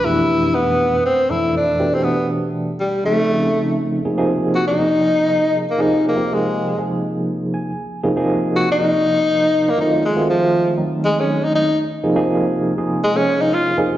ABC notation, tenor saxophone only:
X:1
M:4/4
L:1/16
Q:"Swing 16ths" 1/4=120
K:Flyd
V:1 name="Tenor saxophone"
E4 B,4 C2 E2 D3 C | B,2 z4 G,2 A,6 z2 | [K:Bbdor] z4 _G E8 B, E2 | B,2 A,4 z8 z2 |
z4 _G E8 B, E2 | A,2 F,4 z2 A, D2 E E2 z2 | z8 A, D2 E F2 z2 |]